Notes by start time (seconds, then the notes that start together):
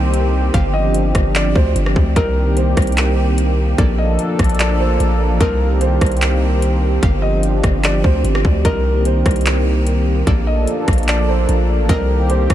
Already playing: C2 D#3 A#3 C4 G4 A#4 C5 D#5
0.14 closed hi-hat
0.54 G1 F3 D4 G4 F5, kick, closed hi-hat
0.73 D#5
0.94 closed hi-hat
1.15 G1, kick, cross-stick, closed hi-hat
1.35 D5, clap, closed hi-hat
1.56 D2 C5, kick
1.76 G1, closed hi-hat
1.86 cross-stick
1.96 D2, kick
2.16 C2 D#3 A#3 C4 G4 A#4 D#5, kick, closed hi-hat
2.57 C5, closed hi-hat
2.77 C2, kick, cross-stick, closed hi-hat
2.82 closed hi-hat
2.87 closed hi-hat
2.92 closed hi-hat
2.97 clap, closed hi-hat
3.38 closed hi-hat
3.78 A#1 F3 A#3 D4 A4 D5, kick, closed hi-hat
3.98 D#5
4.19 closed hi-hat
4.39 A#1, kick, cross-stick, closed hi-hat
4.44 closed hi-hat
4.49 closed hi-hat
4.55 closed hi-hat
4.60 D5, clap, closed hi-hat
4.80 C5
5.00 A#1, closed hi-hat
5.30 A1
5.41 C2 D#3 C4 G4 A#4 D#5, kick, closed hi-hat
5.81 C5, closed hi-hat
6.01 C2, kick, cross-stick, closed hi-hat
6.06 closed hi-hat
6.12 closed hi-hat
6.17 closed hi-hat
6.22 clap, closed hi-hat
6.62 closed hi-hat
7.03 G1 F3 D4 G4 F5, kick, closed hi-hat
7.22 D#5
7.43 closed hi-hat
7.64 G1, kick, cross-stick, closed hi-hat
7.84 D5, clap, closed hi-hat
8.04 D2 C5, kick
8.24 G1, closed hi-hat
8.35 cross-stick
8.45 D2, kick
8.65 C2 D#3 A#3 A#4 D#5, kick, closed hi-hat
9.05 C5, closed hi-hat
9.26 C2, kick, cross-stick, closed hi-hat
9.31 closed hi-hat
9.36 closed hi-hat
9.41 closed hi-hat
9.46 clap, closed hi-hat
9.87 closed hi-hat
10.27 A#1 F3 A#3 D4 A4 D5, kick, closed hi-hat
10.47 D#5
10.67 closed hi-hat
10.88 A#1, kick, cross-stick, closed hi-hat
10.93 closed hi-hat
10.98 closed hi-hat
11.03 closed hi-hat
11.08 D5, clap, closed hi-hat
11.29 C5
11.49 A#1, closed hi-hat
11.79 A1
11.89 C2 D#3 C4 G4 A#4 D#5, kick, closed hi-hat
12.30 C5, closed hi-hat
12.50 C2, kick, cross-stick, closed hi-hat